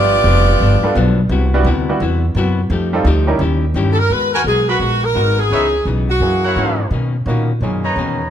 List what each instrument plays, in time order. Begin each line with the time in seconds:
Already playing: upright bass G1, hollow-body jazz guitar G2 F3 B3 D4, saxophone section B3 F4 G4 D5
0.24 upright bass F1, hollow-body jazz guitar G2 F3 B3 D4
0.60 upright bass G1, hollow-body jazz guitar G2 F3 B3 D4
0.82 upright piano G3 B3 D4 F4 A4, muted upright bass stroke
0.95 upright bass B1, hollow-body jazz guitar G2 F3 B3 D4
1.29 upright bass C2, hollow-body jazz guitar C3 B3 E4 F#4
1.54 upright piano G3 B3 D4 E4 F#4
1.64 upright bass D2, hollow-body jazz guitar C3 B3 E4 F#4
1.89 upright piano G3 B3 D4 E4 F#4
2.00 upright bass E2, hollow-body jazz guitar C3 B3 E4 F#4
2.35 upright bass F#2, hollow-body jazz guitar C3 B3 E4 F#4
2.70 upright bass F2, hollow-body jazz guitar F3 A3 D#4 G4
2.93 upright piano G3 C4 D#4 F4 A4
3.05 upright bass D2, hollow-body jazz guitar F3 A3 D#4 G4
3.27 upright piano G3 C#4 D#4 E4 A#4
3.39 upright bass D#2, hollow-body jazz guitar D#3 C#4 E4 G4
3.74 upright bass G2, hollow-body jazz guitar D#3 C#4 E4 G4
3.92 saxophone section A4
3.99 saxophone section A#4
4.10 upright bass D#2, hollow-body jazz guitar G#3 B3 F#4 A#4, saxophone section B4
4.33 trumpet section F#4 A#4 B4 G#5, saxophone section A#4
4.44 upright bass B1, hollow-body jazz guitar G#3 B3 F#4 A#4, saxophone section G#4
4.68 trumpet section F#4 A#4 B4 B5, saxophone section F#4
4.79 upright bass A#1, hollow-body jazz guitar G#3 B3 F#4 A#4
5.05 saxophone section A#4
5.15 upright bass G#1, hollow-body jazz guitar G#3 B3 F#4 A#4, upright piano B3 D#4 F#4 A#4
5.40 saxophone section G#4
5.50 upright bass C#2, hollow-body jazz guitar C#3 E3 B3 D#4, trumpet section D#4 B4 C#5 E5
5.85 upright bass B1, hollow-body jazz guitar C#3 E3 B3 D#4
6.10 saxophone section F#4
6.20 upright bass F#2, hollow-body jazz guitar F#2 E3 A#3 C#4, upright piano A#3 C#4 E4 G#4
6.43 trumpet section E4 A#4 C#5 F#5
6.56 hollow-body jazz guitar F#2 E3 A#3 C#4, upright bass G#2
6.91 upright bass B2, hollow-body jazz guitar B2 D#3 A#3 C#4
7.26 upright bass A#2, hollow-body jazz guitar B2 D#3 A#3 C#4, upright piano A#3 C#4 D#4 F#4
7.61 upright bass F#2, upright piano A#2 C#4 D#4 G#4, hollow-body jazz guitar B2 D#3 A#3 C#4
7.84 trumpet section D#4 B4 C#5 A#5
7.96 upright bass E2, hollow-body jazz guitar B2 D#3 A#3 C#4